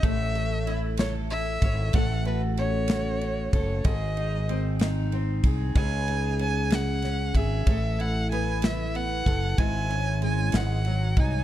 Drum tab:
RD |xxxxxx|xxxxxx|xxxxxx|xxxxxx|
SD |---o--|---o--|---o--|---oo-|
BD |o----o|o----o|o----o|o----o|

RD |xxxxxx|xxxxxx|
SD |---o--|---o--|
BD |o----o|o----o|